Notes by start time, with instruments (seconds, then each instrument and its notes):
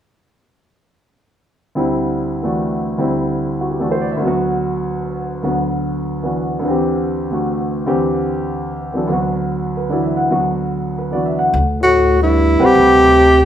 1.75 grand piano D2 D3 G3 C4 E4
2.43 grand piano E3 A3 D4 F#4
2.98 grand piano D2 D3 G3 C4 E4
3.61 grand piano F#4
3.71 grand piano G4
3.79 grand piano E3 A3 D4 F#4 A4
3.91 grand piano C5
4.01 grand piano D5
4.12 grand piano E5
4.17 grand piano D2 D3
4.22 grand piano F#3 B3
4.27 grand piano F#4
5.43 grand piano D2 D3 F#3 B3 F#4
6.23 grand piano E3 B3 D4 F#4
6.59 grand piano D2 D3
6.65 grand piano E3 C4
6.70 grand piano G4
7.30 grand piano D3 A3 F#4
7.86 grand piano D2 D3 E3 C4 G4
8.94 grand piano E3 F#3 D4 A4
9.07 grand piano D2 D3 F#3
9.11 grand piano B3 F#4
9.77 grand piano B4
9.89 grand piano D3 E3 F#3 E4 D5
10.04 grand piano E5
10.17 grand piano F#5
10.30 grand piano D2 D3 F#3 B3 F#4
10.98 grand piano B4
11.11 grand piano E3 B3 D4 F#4 D5
11.26 grand piano E5
11.39 grand piano F#5
11.54 upright bass D2
11.81 trombone A2, alto saxophone F#4
12.21 trombone G2, alto saxophone E4
12.60 trombone C3, grand piano G3 C4 B4 F#5, muted upright bass stroke
12.65 alto saxophone G4
12.75 upright bass D2